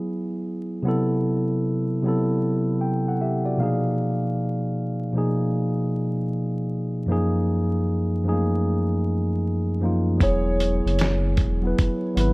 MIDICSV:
0, 0, Header, 1, 5, 480
1, 0, Start_track
1, 0, Tempo, 779221
1, 530, Time_signature, 4, 2, 24, 8
1, 7597, End_track
2, 0, Start_track
2, 0, Title_t, "Felt piano"
2, 0, Program_c, 0, 0
2, 6295, Note_on_c, 0, 73, 101
2, 6902, Note_off_c, 0, 73, 0
2, 7597, End_track
3, 0, Start_track
3, 0, Title_t, "Tine electric piano"
3, 0, Program_c, 1, 4
3, 0, Control_c, 1, 64, 127
3, 0, Note_on_c, 1, 54, 83
3, 0, Note_on_c, 1, 59, 76
3, 0, Note_on_c, 1, 64, 75
3, 0, Note_on_c, 1, 68, 78
3, 509, Note_on_c, 1, 48, 106
3, 517, Note_off_c, 1, 54, 0
3, 517, Note_on_c, 1, 54, 88
3, 525, Note_off_c, 1, 59, 0
3, 525, Note_on_c, 1, 59, 94
3, 536, Note_off_c, 1, 64, 0
3, 536, Note_on_c, 1, 64, 94
3, 539, Control_c, 1, 64, 0
3, 544, Note_off_c, 1, 68, 0
3, 545, Note_on_c, 1, 69, 105
3, 652, Control_c, 1, 64, 127
3, 997, Note_off_c, 1, 48, 0
3, 1001, Note_off_c, 1, 54, 0
3, 1005, Note_off_c, 1, 59, 0
3, 1011, Note_off_c, 1, 64, 0
3, 1015, Note_off_c, 1, 69, 0
3, 1249, Note_on_c, 1, 48, 88
3, 1255, Note_on_c, 1, 54, 83
3, 1264, Note_on_c, 1, 59, 80
3, 1272, Note_on_c, 1, 64, 78
3, 1282, Note_on_c, 1, 69, 92
3, 1506, Note_off_c, 1, 69, 0
3, 1732, Note_on_c, 1, 79, 64
3, 1874, Note_off_c, 1, 79, 0
3, 1900, Note_on_c, 1, 78, 60
3, 1904, Note_on_c, 1, 69, 49
3, 1909, Note_off_c, 1, 48, 0
3, 1912, Note_off_c, 1, 54, 0
3, 1916, Note_off_c, 1, 59, 0
3, 1921, Note_off_c, 1, 64, 0
3, 1973, Note_off_c, 1, 78, 0
3, 1977, Note_off_c, 1, 69, 0
3, 1980, Note_on_c, 1, 76, 65
3, 1985, Note_on_c, 1, 67, 60
3, 2124, Note_off_c, 1, 67, 0
3, 2127, Note_on_c, 1, 74, 62
3, 2129, Note_on_c, 1, 66, 52
3, 2199, Note_off_c, 1, 76, 0
3, 2201, Note_on_c, 1, 47, 88
3, 2212, Note_on_c, 1, 53, 79
3, 2216, Note_on_c, 1, 77, 69
3, 2219, Control_c, 1, 64, 0
3, 2219, Note_on_c, 1, 58, 81
3, 2227, Note_on_c, 1, 63, 82
3, 2236, Note_on_c, 1, 68, 88
3, 2339, Control_c, 1, 64, 127
3, 2354, Note_off_c, 1, 74, 0
3, 2355, Note_off_c, 1, 66, 0
3, 2437, Note_off_c, 1, 77, 0
3, 2987, Note_off_c, 1, 47, 0
3, 2992, Note_off_c, 1, 53, 0
3, 2996, Note_off_c, 1, 58, 0
3, 3000, Note_off_c, 1, 63, 0
3, 3005, Note_off_c, 1, 68, 0
3, 3158, Note_on_c, 1, 47, 83
3, 3167, Note_on_c, 1, 53, 77
3, 3175, Note_on_c, 1, 58, 77
3, 3185, Note_on_c, 1, 63, 75
3, 3191, Note_on_c, 1, 68, 90
3, 3823, Note_off_c, 1, 47, 0
3, 3828, Note_off_c, 1, 53, 0
3, 3832, Note_off_c, 1, 58, 0
3, 3837, Note_off_c, 1, 63, 0
3, 3840, Note_off_c, 1, 68, 0
3, 4351, Note_on_c, 1, 42, 101
3, 4360, Note_on_c, 1, 53, 90
3, 4369, Note_on_c, 1, 58, 91
3, 4378, Control_c, 1, 64, 0
3, 4379, Note_on_c, 1, 63, 87
3, 4384, Note_on_c, 1, 68, 103
3, 4473, Control_c, 1, 64, 127
3, 4838, Note_off_c, 1, 42, 0
3, 4843, Note_off_c, 1, 53, 0
3, 4847, Note_off_c, 1, 58, 0
3, 4852, Note_off_c, 1, 63, 0
3, 4855, Note_off_c, 1, 68, 0
3, 5073, Note_on_c, 1, 42, 88
3, 5080, Note_on_c, 1, 53, 74
3, 5090, Note_on_c, 1, 57, 59
3, 5100, Note_on_c, 1, 63, 76
3, 5107, Note_on_c, 1, 68, 97
3, 5130, Note_on_c, 1, 58, 78
3, 5142, Note_off_c, 1, 57, 0
3, 5741, Note_off_c, 1, 42, 0
3, 5745, Note_off_c, 1, 53, 0
3, 5754, Note_off_c, 1, 63, 0
3, 5758, Note_off_c, 1, 68, 0
3, 5769, Note_off_c, 1, 58, 0
3, 6037, Note_on_c, 1, 42, 85
3, 6045, Note_on_c, 1, 53, 81
3, 6054, Note_on_c, 1, 58, 82
3, 6061, Note_on_c, 1, 63, 74
3, 6070, Note_on_c, 1, 65, 89
3, 6225, Note_off_c, 1, 42, 0
3, 6229, Note_off_c, 1, 53, 0
3, 6234, Note_off_c, 1, 58, 0
3, 6237, Note_off_c, 1, 63, 0
3, 6242, Note_off_c, 1, 65, 0
3, 6269, Note_on_c, 1, 54, 85
3, 6284, Note_on_c, 1, 59, 91
3, 6293, Note_on_c, 1, 64, 88
3, 6298, Control_c, 1, 64, 0
3, 6305, Note_on_c, 1, 68, 107
3, 6408, Control_c, 1, 64, 127
3, 6857, Note_off_c, 1, 54, 0
3, 6864, Note_off_c, 1, 59, 0
3, 6869, Note_off_c, 1, 64, 0
3, 6875, Note_off_c, 1, 68, 0
3, 7155, Note_on_c, 1, 54, 78
3, 7167, Note_on_c, 1, 59, 70
3, 7178, Note_on_c, 1, 64, 76
3, 7189, Note_on_c, 1, 71, 87
3, 7397, Note_off_c, 1, 54, 0
3, 7403, Note_off_c, 1, 59, 0
3, 7409, Note_off_c, 1, 64, 0
3, 7414, Note_off_c, 1, 71, 0
3, 7481, Note_on_c, 1, 54, 80
3, 7491, Note_on_c, 1, 59, 77
3, 7501, Note_on_c, 1, 64, 84
3, 7518, Note_on_c, 1, 71, 93
3, 7597, Note_off_c, 1, 54, 0
3, 7597, Note_off_c, 1, 59, 0
3, 7597, Note_off_c, 1, 64, 0
3, 7597, Note_off_c, 1, 71, 0
3, 7597, End_track
4, 0, Start_track
4, 0, Title_t, "Sub bass"
4, 0, Program_c, 2, 38
4, 6287, Note_on_c, 2, 28, 100
4, 6658, Note_off_c, 2, 28, 0
4, 6686, Note_on_c, 2, 30, 94
4, 7010, Note_on_c, 2, 28, 92
4, 7020, Note_off_c, 2, 30, 0
4, 7229, Note_off_c, 2, 28, 0
4, 7493, Note_on_c, 2, 32, 97
4, 7597, Note_off_c, 2, 32, 0
4, 7597, End_track
5, 0, Start_track
5, 0, Title_t, "Drums"
5, 6286, Note_on_c, 9, 36, 97
5, 6290, Note_on_c, 9, 42, 88
5, 6348, Note_off_c, 9, 36, 0
5, 6352, Note_off_c, 9, 42, 0
5, 6531, Note_on_c, 9, 42, 55
5, 6593, Note_off_c, 9, 42, 0
5, 6698, Note_on_c, 9, 42, 34
5, 6760, Note_off_c, 9, 42, 0
5, 6768, Note_on_c, 9, 42, 71
5, 6784, Note_on_c, 9, 38, 104
5, 6829, Note_off_c, 9, 42, 0
5, 6846, Note_off_c, 9, 38, 0
5, 7005, Note_on_c, 9, 42, 56
5, 7008, Note_on_c, 9, 36, 97
5, 7066, Note_off_c, 9, 42, 0
5, 7069, Note_off_c, 9, 36, 0
5, 7260, Note_on_c, 9, 42, 85
5, 7261, Note_on_c, 9, 36, 96
5, 7321, Note_off_c, 9, 42, 0
5, 7323, Note_off_c, 9, 36, 0
5, 7498, Note_on_c, 9, 42, 67
5, 7560, Note_off_c, 9, 42, 0
5, 7597, End_track
0, 0, End_of_file